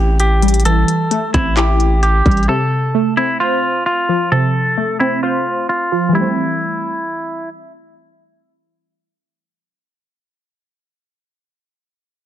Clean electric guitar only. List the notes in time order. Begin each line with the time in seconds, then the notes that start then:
Already playing: G4
0.20 G4
0.65 A4
1.34 E4
1.57 G4
2.03 G4
2.49 A4
3.17 E4
3.40 F4
3.86 F4
4.32 A4
5.00 E4
5.23 F4
5.69 F4
6.15 E4